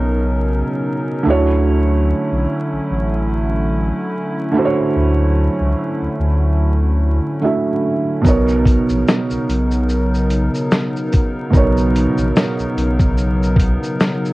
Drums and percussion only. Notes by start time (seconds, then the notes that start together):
8.25 kick, shaker
8.49 shaker
8.66 kick, closed hi-hat, shaker
8.89 shaker
9.08 snare, shaker
9.31 shaker
9.50 closed hi-hat, shaker
9.71 shaker
9.89 shaker
10.15 shaker
10.31 closed hi-hat, shaker
10.55 shaker
10.72 snare, shaker
10.97 shaker
11.13 kick, closed hi-hat, shaker
11.53 kick, shaker
11.77 shaker
11.96 closed hi-hat, shaker
12.18 shaker
12.37 snare, shaker
12.59 shaker
12.78 closed hi-hat, shaker
12.99 kick, shaker
13.18 shaker
13.43 shaker
13.56 kick, closed hi-hat, shaker
13.84 shaker
14.00 snare, shaker
14.26 shaker